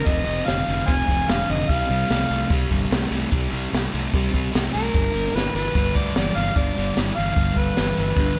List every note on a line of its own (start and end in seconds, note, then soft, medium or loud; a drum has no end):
0.04 0.20 F1 medium
0.04 0.23 F2 medium
0.04 0.24 C3 medium
0.04 0.49 D#5 loud
0.04 kick loud
0.04 ride medium
0.24 0.40 F1 medium
0.24 0.44 F2 medium
0.24 0.44 C3 medium
0.24 ride medium
0.38 snare soft
0.46 0.62 F1 medium
0.46 0.64 F2 medium
0.46 0.65 D3 medium
0.46 0.86 F5 loud
0.46 snare loud
0.46 ride medium
0.66 0.81 F1 medium
0.66 0.85 F2 medium
0.66 0.85 D3 medium
0.66 ride medium
0.86 1.02 F1 medium
0.86 1.06 F2 medium
0.86 1.06 C3 medium
0.86 0.94 C5 medium
0.86 0.93 F5 medium
0.86 1.31 G#5 loud
0.86 kick loud
0.86 ride medium
1.08 1.22 F1 medium
1.08 1.27 F2 medium
1.08 1.27 C3 medium
1.08 kick medium
1.08 ride medium
1.28 1.42 F1 medium
1.28 1.46 F2 medium
1.28 1.47 D3 medium
1.28 1.51 F5 loud
1.28 snare loud
1.28 ride medium
1.47 1.63 F1 medium
1.47 1.67 F2 medium
1.47 1.67 D3 medium
1.47 1.71 D#5 medium
1.47 ride medium
1.69 1.83 C2 medium
1.69 1.88 C3 medium
1.69 1.88 G3 loud
1.69 2.51 F5 loud
1.69 kick loud
1.69 ride medium
1.89 2.03 C2 medium
1.89 2.08 C3 medium
1.89 2.09 G3 medium
1.89 ride medium
2.09 2.23 C2 medium
2.09 2.29 C3 medium
2.09 2.29 A3 medium
2.09 snare loud
2.09 ride medium
2.30 2.44 C2 medium
2.30 2.49 C3 medium
2.30 2.49 A3 medium
2.30 ride medium
2.50 2.64 C2 medium
2.50 2.70 C3 medium
2.50 2.70 G3 medium
2.50 kick loud
2.50 ride medium
2.71 2.84 G1 medium
2.71 2.90 C3 medium
2.71 2.90 G3 medium
2.71 kick medium
2.71 ride medium
2.91 3.05 C2 medium
2.91 3.10 C3 medium
2.91 3.10 A3 medium
2.91 snare loud
2.91 ride medium
3.11 3.25 C2 medium
3.11 3.29 C3 medium
3.11 3.30 A3 medium
3.11 ride medium
3.30 3.46 C2 medium
3.30 3.50 C3 medium
3.30 3.50 G3 loud
3.30 kick loud
3.30 ride medium
3.51 3.66 C2 medium
3.51 3.70 C3 medium
3.51 3.70 G3 medium
3.51 ride medium
3.72 3.86 C2 medium
3.72 3.91 C3 medium
3.72 3.91 A3 loud
3.72 snare loud
3.72 ride medium
3.93 4.07 C2 medium
3.93 4.11 C3 medium
3.93 4.12 A3 medium
3.93 ride medium
4.13 4.27 C2 medium
4.13 4.32 C3 medium
4.13 4.33 G3 medium
4.13 kick loud
4.13 ride medium
4.33 4.47 C2 medium
4.33 4.52 C3 medium
4.33 4.52 G3 medium
4.33 kick medium
4.33 ride medium
4.53 4.68 C2 medium
4.53 4.72 C3 medium
4.53 4.72 A3 medium
4.53 snare loud
4.53 ride medium
4.74 4.88 C2 medium
4.74 4.92 C3 medium
4.74 4.93 A3 medium
4.74 5.37 A#4 loud
4.74 ride medium
4.94 5.08 G1 medium
4.94 5.12 G2 medium
4.94 5.13 D3 medium
4.94 kick loud
4.94 ride medium
5.13 5.28 G1 medium
5.13 5.32 G2 medium
5.13 5.33 D3 medium
5.13 ride medium
5.27 snare soft
5.34 5.48 G1 medium
5.34 5.53 G2 medium
5.34 5.53 E3 medium
5.34 5.55 B4 medium
5.34 snare loud
5.34 ride medium
5.55 5.68 G1 medium
5.55 5.73 G2 medium
5.55 5.73 E3 medium
5.55 5.98 B4 medium
5.55 ride medium
5.75 5.88 G1 medium
5.75 5.93 G2 medium
5.75 5.94 D3 medium
5.75 kick loud
5.75 ride medium
5.95 6.09 D2 medium
5.95 6.14 G2 medium
5.95 6.14 D3 medium
5.95 6.16 D5 medium
5.95 kick medium
5.95 ride medium
6.15 6.29 G1 medium
6.15 6.34 G2 medium
6.15 6.34 E3 medium
6.15 6.39 D5 medium
6.15 snare loud
6.15 ride medium
6.36 6.49 G1 medium
6.36 6.54 G2 medium
6.36 6.54 E3 medium
6.36 6.59 F5 loud
6.36 ride medium
6.55 6.69 G1 loud
6.55 6.74 G2 medium
6.55 6.74 D3 loud
6.55 6.97 D5 loud
6.55 kick loud
6.55 ride medium
6.76 6.90 G1 medium
6.76 6.95 G2 medium
6.76 6.95 D3 medium
6.76 ride medium
6.96 7.10 G1 medium
6.96 7.15 G2 medium
6.96 7.15 E3 loud
6.96 snare loud
6.96 ride medium
7.16 7.31 G1 medium
7.16 7.35 G2 medium
7.16 7.35 E3 medium
7.16 7.60 F5 loud
7.16 ride medium
7.36 7.50 G1 medium
7.36 7.54 G2 medium
7.36 7.54 D3 medium
7.36 kick loud
7.36 ride medium
7.56 7.70 G1 medium
7.56 7.75 G2 medium
7.56 7.75 D3 medium
7.56 7.98 B4 medium
7.56 kick medium
7.56 ride medium
7.76 7.91 G1 medium
7.76 7.95 G2 medium
7.76 7.95 E3 medium
7.76 snare loud
7.76 ride medium
7.96 8.11 G1 medium
7.96 8.14 G2 medium
7.96 8.15 E3 medium
7.96 8.39 B4 medium
7.96 ride medium
8.16 8.30 G1 medium
8.16 8.34 G2 medium
8.16 8.34 D3 medium
8.16 kick loud
8.16 ride medium